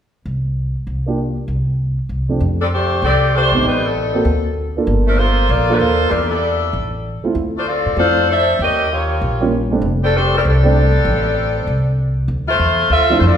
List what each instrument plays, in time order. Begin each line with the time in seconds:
0.25 upright bass C2
0.87 upright bass C2
1.06 grand piano A#3 D4 F4 G4
1.48 upright bass C2
2.09 upright bass C2
2.29 grand piano F2 A3 C4 D4 G4
2.40 upright bass F2
2.62 saxophone section G3 C4 D4 A4
2.73 saxophone section A3 D4 G4 C5
3.02 upright bass C2, saxophone section C4 G4 A4 D5
3.35 saxophone section A3 D4 G4 C5
3.52 upright bass G#1, grand piano B3 C4 D#4 G4
3.62 upright bass A1, saxophone section D#4
3.67 saxophone section G3 C4 B4
3.85 saxophone section G3 C4 D#4 A4
4.14 grand piano A#3 C4 F#4 A4
4.25 upright bass D2
4.77 grand piano A#3 D4 F4 A4
4.87 upright bass G1
5.07 saxophone section F3 A3 D4 A#4
5.18 saxophone section A#3 F4 A4 C5
5.49 upright bass A#1, saxophone section A#3 F4 A4 D5
5.69 grand piano A#3 D4 F4 A4
5.74 saxophone section A#3 B4
5.78 upright bass D#2, saxophone section F4 A4 C5
6.10 upright bass E2, saxophone section G3 D4 E4 A#4
6.29 saxophone section G3 D4 E4 A4
6.73 upright bass A1
7.24 grand piano A3 C4 E4 F4, muted upright bass stroke
7.35 upright bass D2
7.57 saxophone section A3 D4 F4 C5
7.67 saxophone section C4 F4 A4 D5
7.86 upright bass A2
7.97 upright bass F2, grand piano A3 C4 E4 F4, saxophone section D4 A4 C5 F5
8.30 saxophone section D4 A4 C5 E5
8.59 upright bass D#2, saxophone section C#4 G4 A#4 D#5
8.92 saxophone section A#3 F4 G4 C#5
9.21 upright bass A#1
9.41 grand piano G3 A#3 C#4 F4
9.71 grand piano G3 A3 C4 D4
9.82 upright bass F1
10.04 saxophone section G3 C4 D4 A4
10.17 saxophone section A3 D4 G4 C5
10.37 saxophone section G3 C4 E4 A#4
10.45 upright bass C2, saxophone section G3 C4 D4 A4
10.63 grand piano G3 A3 C4 D4
11.05 upright bass A1
11.67 upright bass C2
12.28 upright bass D2
12.48 saxophone section A3 E4 F4 C5
12.59 upright bass E2
12.90 upright bass D2, saxophone section C4 F4 A4 E5
13.10 grand piano F3 A3 C4 D4 E4
13.20 upright bass F2, saxophone section C5
13.24 saxophone section C4 F4 A4 D5